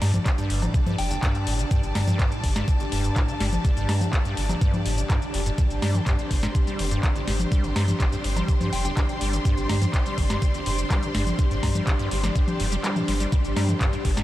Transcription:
Already playing: D4 G4 D5 A5
0.02 G2, snare, open hi-hat, cowbell
0.14 G1, closed hi-hat, low conga, cabasa
0.26 G1, kick, clap, closed hi-hat, cabasa
0.38 G2, closed hi-hat, cabasa
0.50 G1, open hi-hat
0.62 A2, closed hi-hat, cowbell, low conga, cabasa
0.74 D3, kick, closed hi-hat, cabasa
0.86 G2, closed hi-hat, low conga, cabasa
0.98 F1 G1 G5, open hi-hat
1.11 G1 G5, closed hi-hat, cabasa
1.23 G2, kick, clap, closed hi-hat, cowbell, cabasa
1.35 closed hi-hat, cabasa
1.47 G1 A2, open hi-hat
1.59 D3, closed hi-hat, cabasa
1.71 G2, kick, closed hi-hat, cabasa
1.83 G1, closed hi-hat, cabasa
1.95 G1 G2, snare, open hi-hat, cowbell
2.07 G2, closed hi-hat, low conga, cabasa
2.19 kick, clap, closed hi-hat, cabasa
2.32 A2, closed hi-hat, cabasa
2.44 G1 D3, kick, open hi-hat
2.56 G2, snare, closed hi-hat, cowbell, cabasa
2.68 G1, kick, closed hi-hat, cabasa
2.80 G1, closed hi-hat, cabasa
2.92 F1 G2, open hi-hat
3.04 closed hi-hat, cabasa
3.16 A2, kick, clap, closed hi-hat, cowbell, cabasa
3.28 D3, closed hi-hat, cabasa
3.40 G1 G2, snare, open hi-hat
3.53 G1, closed hi-hat, low conga, cabasa
3.65 G1, kick, closed hi-hat, cabasa
3.77 G1 G2, closed hi-hat, cabasa
3.89 G2, snare, open hi-hat, cowbell
4.01 A2, closed hi-hat, low conga, cabasa
4.13 D3, kick, clap, closed hi-hat, cabasa
4.25 G2, closed hi-hat, cabasa
4.37 G1, open hi-hat
4.49 G1, closed hi-hat, cowbell, low conga, cabasa
4.61 G2, kick, closed hi-hat, cabasa
4.74 closed hi-hat, low conga, cabasa
4.86 G1 A2, open hi-hat
4.98 D3, closed hi-hat, cabasa
5.10 G2, kick, clap, closed hi-hat, cowbell, cabasa
5.22 G1, closed hi-hat, cabasa
5.34 F1 G1, open hi-hat
5.46 G2, closed hi-hat, cabasa
5.58 G2 C5, kick, closed hi-hat, cabasa
5.70 G1, closed hi-hat, cabasa
5.82 G2 G3, snare, open hi-hat, cowbell
5.95 D3, closed hi-hat, low conga, cabasa
6.07 G2, kick, clap, closed hi-hat, cabasa
6.19 G1, closed hi-hat, cabasa
6.31 G1 C6, kick, open hi-hat
6.43 G2, snare, closed hi-hat, cowbell, cabasa
6.55 kick, closed hi-hat, cabasa
6.67 G3, closed hi-hat, cabasa
6.79 F1 D3, open hi-hat
6.91 G2, closed hi-hat, cabasa
7.03 G1, kick, clap, closed hi-hat, cowbell, cabasa
7.16 G1, closed hi-hat, cabasa
7.27 G1 G2, snare, open hi-hat
7.40 closed hi-hat, low conga, cabasa
7.52 G3, kick, closed hi-hat, cabasa
7.64 G1 D3, closed hi-hat, cabasa
7.76 G2, snare, open hi-hat, cowbell
7.88 G1, closed hi-hat, low conga, cabasa
8.00 G1, kick, clap, closed hi-hat, cabasa
8.12 G2, closed hi-hat, cabasa
8.24 G1, open hi-hat
8.36 G3, closed hi-hat, cowbell, low conga, cabasa
8.48 D3, kick, closed hi-hat, cabasa
8.61 G2, closed hi-hat, low conga, cabasa
8.73 F1 G1 G5, open hi-hat
8.85 G1 G5, closed hi-hat, cabasa
8.97 G2, kick, clap, closed hi-hat, cowbell, cabasa
9.09 closed hi-hat, cabasa
9.21 G1 G3, open hi-hat
9.33 D3, closed hi-hat, cabasa
9.45 G2, kick, closed hi-hat, cabasa
9.57 G1, closed hi-hat, cabasa
9.69 G1 G2, snare, open hi-hat, cowbell
9.82 G2, closed hi-hat, low conga, cabasa
9.94 kick, clap, closed hi-hat, cabasa
10.06 G3, closed hi-hat, cabasa
10.18 G1 D3, kick, open hi-hat
10.30 G2, snare, closed hi-hat, cowbell, cabasa
10.42 G1, kick, closed hi-hat, cabasa
10.54 G1, closed hi-hat, cabasa
10.66 F1 G2, open hi-hat
10.78 closed hi-hat, cabasa
10.90 G3, kick, clap, closed hi-hat, cowbell, cabasa
11.03 D3, closed hi-hat, cabasa
11.15 G1 G2, snare, open hi-hat
11.27 G1, closed hi-hat, low conga, cabasa
11.39 G1, kick, closed hi-hat, cabasa
11.51 G1 G2, closed hi-hat, cabasa
11.63 G2, kick, snare, open hi-hat, cowbell
11.75 G3, closed hi-hat, low conga, cabasa
11.87 D3, kick, clap, closed hi-hat, cabasa
11.99 G2, closed hi-hat, cabasa
12.11 G1, open hi-hat
12.24 G1, snare, cowbell, low conga, cabasa
12.36 G2, kick, closed hi-hat, cabasa
12.48 closed hi-hat, low conga, cabasa
12.60 F1 G2, open hi-hat
12.72 G3, closed hi-hat, cabasa
12.84 G3, clap, closed hi-hat, cowbell, cabasa
12.96 G2, closed hi-hat, low conga, cabasa
13.08 G1 G3, open hi-hat
13.20 G3, closed hi-hat, cabasa
13.32 G2 C5, kick, closed hi-hat, cabasa
13.45 G1, closed hi-hat, cabasa
13.56 G2 G3, snare, open hi-hat, cowbell
13.69 D3, closed hi-hat, low conga, cabasa
13.81 G2, kick, clap, closed hi-hat, cabasa
13.93 G2, closed hi-hat, cabasa
14.05 G1 A5, kick, open hi-hat
14.17 G2, snare, closed hi-hat, cowbell, cabasa

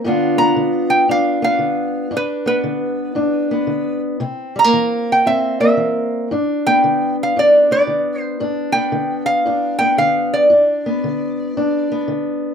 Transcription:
0.04 G2 D3 B3 D4 F4
0.38 B3 A#5
0.56 D3
0.90 G5
1.08 G2 D4 F5
1.42 B3 F5
1.59 D3
2.11 G2 D4
2.17 B4
2.46 B3 B4
2.64 D3
3.15 G2 D4
3.51 B3
3.67 D3
4.20 C3 C4
4.56 G3 A#5
4.64 A#3
4.73 E3
5.12 G5
5.26 G2 C4 E5
5.60 A#3 E5
5.77 E3
6.31 G2 D4
6.67 B3 G5
6.84 D3
7.23 F5
7.36 G2 D4 D5
7.71 B3 D5
7.87 D3
8.20 C5
8.40 G2 D4
8.72 B3 G5
8.92 D3
9.26 F5
9.46 G2 D4
9.79 B3 G5
9.98 D3 F5
10.34 D5
10.50 G2 D4
10.86 B3
11.04 D3
11.57 G2 D4
11.92 B3
12.08 D3

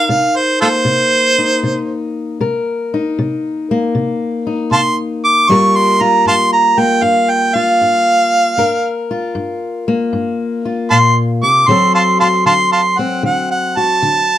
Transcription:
Already playing: D#4 A#4 F5
0.09 C3 F5
0.36 C5
0.61 A#3 F4 A4 C5
0.85 C3
1.39 D#4
1.63 C3
2.40 C3 A#4
2.94 D#4
3.19 C3
3.71 A#3
3.95 C3
4.47 D#4
4.71 C3 F5 A5 C6
5.25 D6
5.49 G2 G3 A#3 F4 A#4 C#6
5.76 C6
6.01 F4 A#5
6.26 G2 F5 A5 C6
6.53 A#5
6.78 A#3 G5
7.02 G2 F5
7.30 G5
7.55 F4 F5
7.81 G2
8.58 G2 A#4
9.11 F4
9.35 G2
9.88 A#3
10.13 G2
10.65 F4
10.91 A#2 F5 A5 C6
11.43 C3 D6
11.67 D3 F#3 C4 F#4 A4 C6
11.95 F5 A5 C6
12.20 F#4 F5 A5 C6
12.46 D3 F5 A5 C6
12.72 F5 A5 C6
12.99 C4 F#5
13.23 D3 F#5
13.51 F#5
13.77 F#4 A5
14.02 D3

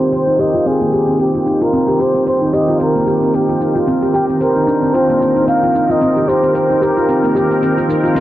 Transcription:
Already playing: D#3 C4 A#4 C5 G5
0.01 C4, open hi-hat, shaker
0.12 C5, open hi-hat, shaker
0.27 D#4, shaker
0.39 G4 D#5, shaker
0.54 F4, shaker
0.66 C4 G#4, open hi-hat, shaker
0.81 A#3, open hi-hat, shaker
0.92 G4, shaker
1.08 C4, open hi-hat, shaker
1.19 C4 G4, open hi-hat, shaker
1.34 F4, open hi-hat, shaker
1.46 D#4, shaker
1.61 F4 A#4, shaker
1.73 C4, open hi-hat, shaker
1.88 G4, open hi-hat, shaker
2.00 G4 C5, shaker
2.15 C4, open hi-hat, shaker
2.27 C5, open hi-hat, shaker
2.42 D#4, shaker
2.53 G4 D#5, shaker
2.69 F4, shaker
2.80 C4 A#4, open hi-hat, shaker
2.95 A#3, open hi-hat, shaker
3.07 G4, shaker
3.22 C4, open hi-hat, shaker
3.34 C4 G4, open hi-hat, shaker
3.49 F4, open hi-hat, shaker
3.60 D#4, shaker
3.75 F4, shaker
3.87 C4, open hi-hat, shaker
4.02 G4, open hi-hat, shaker
4.14 G4 G5, shaker
4.29 C4, open hi-hat, shaker
4.41 A#4 C5, open hi-hat, shaker
4.56 D#4, shaker
4.67 D4, shaker
4.82 C4, shaker
4.94 F4 C5, open hi-hat, shaker
5.10 A#3, open hi-hat, shaker
5.21 F4, shaker
5.36 D#4, open hi-hat, shaker
5.48 C4 F5, open hi-hat, shaker
5.63 F4, open hi-hat, shaker
5.75 D#4, shaker
5.89 F4 D#5, shaker
6.01 C4, open hi-hat, shaker
6.16 G4, open hi-hat, shaker
6.28 G4 C5, shaker
6.43 C4, open hi-hat, shaker
6.55 C5, open hi-hat, shaker
6.70 D#4, shaker
6.82 G4 A#4, shaker
6.97 F4, shaker
7.09 C4, open hi-hat, shaker
7.24 A#3, open hi-hat, shaker
7.35 G4, shaker
7.51 C4, open hi-hat, shaker
7.62 C4, open hi-hat, shaker
7.77 F4, open hi-hat, shaker
7.89 D#4, shaker
8.04 F4, shaker
8.15 C4, open hi-hat, shaker

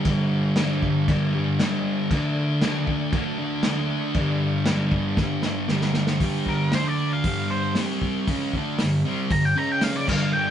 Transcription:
0.04 G2 D3, kick, crash
0.10 G3
0.56 G2, snare, crash
0.60 D3 G3
0.82 G3, kick
0.88 D3
1.08 G2 D3, kick, crash
1.13 G3
1.34 G3
1.38 D3
1.59 G2 D3, snare, crash
1.64 G3
2.11 D3 A3, kick, crash
2.16 D4
2.62 D3 A3, snare, crash
2.67 D4
2.87 D4, kick
2.92 A3
3.12 D3 A3, kick, crash
3.17 D4
3.38 D4
3.43 A3
3.63 D3, snare, crash
3.68 A3 D4
4.14 G2 D3, kick, crash
4.20 G3
4.66 G2, snare, crash
4.70 D3 G3
4.92 G3, kick
4.97 D3
5.17 G2 D3, kick, snare
5.22 G3
5.42 G3, snare
5.48 D3
5.68 G2 D3, snare
5.72 G3
5.81 snare
5.94 snare
6.07 snare
6.20 G2 D3 G3, kick, open hi-hat
6.46 A#4, kick
6.72 D3 A3 D4 C5, snare, open hi-hat
6.88 D5
7.13 F5
7.24 G2 D3 G3, kick, open hi-hat
7.50 C5
7.75 C3 G3 C4, snare, open hi-hat
8.02 kick
8.27 C#3 G#3 C#4, kick, open hi-hat
8.53 D3 A3 D4, kick
8.79 G2 D3, snare, open hi-hat
9.05 C3 G3 C4
9.30 G2 D3 A#5, kick, open hi-hat
9.45 G5
9.57 C#3 G#3 C#4 A#5
9.72 G5
9.81 F5, snare, open hi-hat
9.96 D5
10.08 G2 D3 G3 F5, kick, crash
10.33 G2 D3 G3 G5

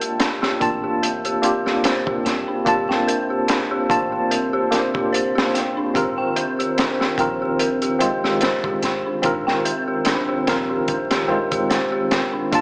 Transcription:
Already playing: A#3 C4 D4 F4 A#4 C5 G5 A5
0.00 G4, closed hi-hat
0.20 D4, snare, closed hi-hat
0.42 G4, snare
0.60 A1 A#3 D4 F4 G5 A5, kick, closed hi-hat
0.84 G4
1.02 A#4, closed hi-hat
1.25 G4, closed hi-hat
1.42 A#3 D4 F4 G4 A#4, closed hi-hat
1.66 G4, snare
1.84 C5, snare, closed hi-hat
2.07 G4, kick
2.25 G1 G5, snare, closed hi-hat
2.48 D4
2.65 G1 A#3 D4 F4 G4 A5, kick, closed hi-hat
2.89 G5, snare
3.07 A#4, closed hi-hat
3.30 G4
3.48 D4, snare, closed hi-hat
3.71 G4
3.89 A1 A#3 D4 F4 G5 A5, kick, closed hi-hat
4.12 G4
4.31 A#4, closed hi-hat
4.53 G4
4.71 A#3 D4 F4 G4 A#4, snare, closed hi-hat
4.94 G4, kick
5.12 C5, closed hi-hat
5.35 G4, snare
5.54 G5, snare, closed hi-hat
5.77 D4
5.94 G#1 D#3 C4 F4 G4 A#4, kick, closed hi-hat
6.18 G5
6.36 A#4, closed hi-hat
6.59 G4, closed hi-hat
6.77 D4, snare, closed hi-hat
7.00 G4, snare
7.18 A#1 D#3 C4 F4 A#4 G5, kick, closed hi-hat
7.42 G4
7.59 A#4, closed hi-hat
7.82 G4, closed hi-hat
7.99 D#3 G#3 C4 F4 A#4, closed hi-hat
8.24 G4, snare
8.41 C5, snare, closed hi-hat
8.64 G4, kick
8.82 G#1 G5, snare, closed hi-hat
9.06 D4
9.22 G#1 D#3 C4 F4 G4 A#4, kick, closed hi-hat
9.47 G5, snare
9.65 A#4, closed hi-hat
9.88 G4
10.05 D4, snare, closed hi-hat
10.29 G4
10.47 A#1 D#3 C4 F4 A#4 G5, snare, closed hi-hat
10.70 G4
10.88 A#4, kick, closed hi-hat
11.11 G4, snare, closed hi-hat
11.28 D#1 D#3 G#3 C4 F4 A#4
11.51 G4, kick, closed hi-hat
11.70 C5, snare, closed hi-hat
11.92 G4
12.11 G5, snare, closed hi-hat
12.33 D4
12.51 G1 A#3 C4 D4 F4 G4 C5 A5, kick, closed hi-hat

